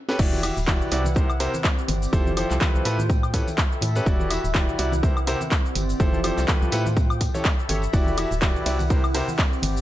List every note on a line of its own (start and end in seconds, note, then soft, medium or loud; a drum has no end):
0.09 0.17 C#4 medium
0.09 0.17 G4 medium
0.09 0.17 A4 medium
0.09 0.17 B4 medium
0.09 snare medium
0.19 0.51 E1 medium
0.19 0.41 E3 medium
0.19 0.41 E4 medium
0.19 1.56 E4 medium
0.19 0.41 F#4 medium
0.19 0.41 G4 medium
0.19 kick loud
0.19 crash loud
0.19 tambourine soft
0.19 shaker medium
0.33 high conga loud
0.33 shaker soft
0.43 0.55 E3 medium
0.43 0.55 E4 medium
0.43 0.55 F#4 medium
0.43 0.55 G4 medium
0.43 0.55 E5 medium
0.43 1.56 F#5 medium
0.43 open hi-hat loud
0.43 tambourine loud
0.43 high woodblock medium
0.57 0.83 D1 medium
0.57 tambourine medium
0.57 shaker medium
0.67 0.89 E3 medium
0.67 0.89 E4 medium
0.67 0.89 F#4 medium
0.67 0.89 G4 medium
0.67 0.89 D5 medium
0.67 kick loud
0.67 clap loud
0.67 tambourine soft
0.67 high conga medium
0.67 shaker medium
0.81 0.89 B1 loud
0.81 shaker soft
0.91 1.48 C2 medium
0.91 1.04 C3 medium
0.91 1.04 E4 medium
0.91 1.04 F#4 medium
0.91 1.04 G4 medium
0.91 1.04 D5 loud
0.91 open hi-hat loud
0.91 tambourine medium
1.05 tambourine soft
1.05 high conga medium
1.05 shaker medium
1.15 1.28 C3 medium
1.15 2.53 C4 medium
1.15 1.28 E4 medium
1.15 1.28 G4 medium
1.15 1.28 A#4 medium
1.15 1.28 C5 medium
1.15 kick loud
1.15 tambourine soft
1.15 shaker medium
1.30 high woodblock medium
1.30 shaker soft
1.40 1.52 C3 medium
1.40 1.52 E4 medium
1.40 1.52 G4 medium
1.40 1.52 A#4 medium
1.40 1.52 C5 loud
1.40 open hi-hat loud
1.40 tambourine loud
1.50 2.53 G4 medium
1.50 tambourine soft
1.50 high conga medium
1.50 shaker medium
1.60 2.53 D5 medium
1.60 clap loud
1.60 tambourine soft
1.64 kick loud
1.64 shaker medium
1.78 shaker soft
1.88 2.07 G1 loud
1.88 open hi-hat loud
1.88 tambourine medium
1.88 high conga loud
2.02 tambourine medium
2.02 shaker medium
2.13 2.45 F1 loud
2.13 2.30 F3 loud
2.13 2.30 E4 loud
2.13 3.10 F4 medium
2.13 2.30 G4 medium
2.13 2.30 A4 medium
2.13 2.30 C5 loud
2.13 kick loud
2.13 tambourine soft
2.13 shaker medium
2.27 3.10 C5 medium
2.27 high conga medium
2.27 shaker soft
2.37 2.55 F3 medium
2.37 2.54 E4 medium
2.37 2.55 G4 medium
2.37 2.55 A4 medium
2.37 2.55 C5 loud
2.37 open hi-hat loud
2.37 tambourine loud
2.37 high woodblock medium
2.50 2.59 C2 medium
2.50 3.49 G5 medium
2.50 clap soft
2.50 tambourine medium
2.50 shaker medium
2.61 2.83 F3 medium
2.61 2.83 E4 medium
2.61 2.83 G4 medium
2.61 2.83 A4 medium
2.61 2.83 B4 medium
2.61 kick loud
2.61 clap loud
2.61 tambourine soft
2.61 high conga medium
2.61 shaker medium
2.75 2.83 C2 loud
2.75 shaker soft
2.85 3.42 A2 medium
2.85 2.97 A3 medium
2.85 2.97 E4 medium
2.85 2.97 G4 medium
2.85 2.97 A4 medium
2.85 2.97 B4 loud
2.85 open hi-hat loud
2.85 tambourine loud
2.99 tambourine soft
2.99 high conga medium
2.99 shaker medium
3.09 4.46 A4 medium
3.09 kick loud
3.09 tambourine soft
3.09 shaker medium
3.23 4.46 E5 medium
3.23 high woodblock medium
3.23 shaker soft
3.34 3.45 A2 medium
3.34 3.45 C#4 medium
3.34 3.45 G4 medium
3.34 3.45 A4 medium
3.34 3.45 B4 medium
3.34 kick medium
3.34 open hi-hat loud
3.34 tambourine medium
3.47 tambourine medium
3.47 high conga medium
3.47 shaker medium
3.54 4.46 B5 medium
3.58 kick loud
3.58 clap loud
3.58 tambourine soft
3.58 shaker medium
3.72 shaker soft
3.81 4.01 A2 loud
3.81 open hi-hat loud
3.81 tambourine loud
3.81 high conga medium
3.95 4.04 C#4 medium
3.95 4.04 G4 medium
3.95 4.04 A4 medium
3.95 4.04 B4 medium
3.95 tambourine medium
3.95 shaker medium
4.06 4.38 E1 medium
4.06 4.28 E3 medium
4.06 4.28 E4 medium
4.06 5.43 E4 medium
4.06 4.28 F#4 medium
4.06 4.28 G4 medium
4.06 4.28 D5 loud
4.06 kick loud
4.06 tambourine soft
4.06 shaker medium
4.20 high conga medium
4.20 shaker soft
4.30 4.42 E3 medium
4.30 4.42 E4 medium
4.30 4.42 F#4 medium
4.30 4.42 G4 medium
4.30 4.42 E5 medium
4.30 open hi-hat loud
4.30 tambourine loud
4.30 high woodblock medium
4.44 4.70 D1 medium
4.44 tambourine medium
4.44 shaker medium
4.51 5.43 F#5 medium
4.51 tambourine soft
4.55 4.76 E3 medium
4.55 4.76 E4 medium
4.55 4.76 F#4 medium
4.55 4.76 G4 medium
4.55 4.76 D5 medium
4.55 kick loud
4.55 clap loud
4.55 high conga medium
4.55 shaker medium
4.68 4.76 B1 loud
4.68 shaker soft
4.79 5.35 C2 medium
4.79 4.91 C3 medium
4.79 4.91 E4 medium
4.79 4.91 F#4 medium
4.79 4.91 G4 medium
4.79 4.91 D5 medium
4.79 open hi-hat loud
4.79 tambourine loud
4.92 tambourine soft
4.92 high conga medium
4.92 shaker medium
5.03 5.15 C3 medium
5.03 6.40 C4 medium
5.03 5.15 E4 medium
5.03 5.15 G4 medium
5.03 5.15 A#4 medium
5.03 5.15 C5 medium
5.03 kick loud
5.03 tambourine soft
5.03 shaker medium
5.17 high woodblock medium
5.17 shaker soft
5.27 5.39 C3 loud
5.27 5.39 E4 medium
5.27 5.39 G4 medium
5.27 5.39 A#4 medium
5.27 5.39 C5 loud
5.27 open hi-hat loud
5.27 tambourine loud
5.41 6.40 G4 medium
5.41 tambourine medium
5.41 high conga medium
5.41 shaker medium
5.47 6.40 D5 medium
5.47 tambourine soft
5.51 kick loud
5.51 clap loud
5.51 shaker medium
5.66 shaker soft
5.75 5.94 G1 loud
5.75 open hi-hat loud
5.75 tambourine loud
5.75 high conga medium
5.89 tambourine medium
5.89 shaker medium
6.00 6.32 F1 loud
6.00 6.17 F3 loud
6.00 6.17 E4 medium
6.00 6.97 F4 medium
6.00 6.17 G4 medium
6.00 6.17 A4 loud
6.00 6.17 C5 loud
6.00 kick loud
6.00 tambourine soft
6.00 shaker medium
6.13 high conga medium
6.13 shaker soft
6.24 6.42 F3 medium
6.24 6.42 E4 medium
6.24 6.42 G4 medium
6.24 6.42 A4 medium
6.24 6.42 C5 loud
6.24 open hi-hat loud
6.24 tambourine loud
6.24 high woodblock medium
6.38 6.46 C2 medium
6.38 clap soft
6.38 tambourine medium
6.38 shaker medium
6.44 7.36 G5 medium
6.48 6.70 F3 medium
6.48 6.70 E4 medium
6.48 6.70 G4 medium
6.48 6.70 A4 medium
6.48 6.70 B4 medium
6.48 kick loud
6.48 clap loud
6.48 tambourine soft
6.48 high conga medium
6.48 shaker medium
6.62 6.70 C2 loud
6.62 shaker soft
6.72 7.29 A2 loud
6.72 6.84 A3 medium
6.72 6.84 E4 medium
6.72 6.84 G4 medium
6.72 6.84 A4 medium
6.72 6.84 B4 loud
6.72 open hi-hat loud
6.72 tambourine loud
6.86 tambourine soft
6.86 high conga medium
6.86 shaker medium
6.96 8.33 A4 medium
6.96 kick loud
6.96 tambourine soft
6.96 shaker medium
7.10 high woodblock medium
7.10 shaker soft
7.21 8.33 E5 medium
7.21 kick medium
7.21 open hi-hat loud
7.21 tambourine loud
7.34 7.43 A2 medium
7.34 7.43 C#4 medium
7.34 7.43 G4 medium
7.34 7.43 A4 medium
7.34 7.43 C#5 medium
7.34 tambourine medium
7.34 high conga medium
7.34 shaker medium
7.41 8.33 B5 medium
7.45 kick loud
7.45 clap loud
7.45 shaker medium
7.59 shaker soft
7.69 7.88 G1 medium
7.69 7.81 C#4 medium
7.69 7.81 G4 medium
7.69 7.81 A4 medium
7.69 7.81 C#5 medium
7.69 open hi-hat loud
7.69 tambourine medium
7.69 high conga loud
7.82 tambourine medium
7.82 shaker medium
7.93 8.26 E1 loud
7.93 8.15 E3 medium
7.93 8.15 E4 medium
7.93 9.30 E4 medium
7.93 8.15 F#4 medium
7.93 8.15 G4 medium
7.93 8.15 D5 loud
7.93 kick loud
7.93 ride medium
7.93 tambourine soft
7.93 shaker medium
8.06 high conga medium
8.06 shaker soft
8.17 8.29 E3 medium
8.17 8.29 E4 medium
8.17 8.29 F#4 medium
8.17 8.29 G4 medium
8.17 8.29 E5 medium
8.17 open hi-hat loud
8.17 ride medium
8.17 tambourine medium
8.17 high woodblock medium
8.31 8.57 D1 medium
8.31 tambourine soft
8.31 shaker medium
8.37 9.30 F#5 medium
8.42 8.64 E3 medium
8.42 8.64 E4 medium
8.42 8.64 F#4 medium
8.42 8.64 G4 medium
8.42 8.64 D5 medium
8.42 kick loud
8.42 clap loud
8.42 ride medium
8.42 tambourine soft
8.42 high conga medium
8.42 shaker medium
8.55 8.63 B1 loud
8.55 shaker soft
8.66 9.22 C2 medium
8.66 8.78 C3 medium
8.66 8.78 E4 medium
8.66 8.78 F#4 medium
8.66 8.78 G4 medium
8.66 8.78 D5 medium
8.66 open hi-hat loud
8.66 ride medium
8.66 tambourine medium
8.79 tambourine medium
8.79 high conga medium
8.79 shaker medium
8.90 9.02 C3 medium
8.90 9.81 C4 medium
8.90 9.02 E4 medium
8.90 9.02 G4 medium
8.90 9.02 A#4 medium
8.90 9.02 C5 medium
8.90 kick loud
8.90 ride medium
8.90 tambourine soft
8.90 shaker medium
9.04 high woodblock medium
9.04 shaker soft
9.14 9.26 C3 loud
9.14 9.26 E4 medium
9.14 9.26 G4 medium
9.14 9.26 A#4 medium
9.14 9.26 C5 loud
9.14 open hi-hat loud
9.14 ride medium
9.14 tambourine loud
9.28 9.81 G4 medium
9.28 tambourine soft
9.28 high conga medium
9.28 shaker medium
9.35 9.81 D5 medium
9.35 tambourine soft
9.39 kick loud
9.39 clap loud
9.39 ride medium
9.39 shaker medium
9.53 shaker soft
9.62 9.81 G1 loud
9.62 open hi-hat loud
9.62 ride medium
9.62 tambourine medium
9.62 high conga medium
9.77 tambourine medium
9.77 shaker medium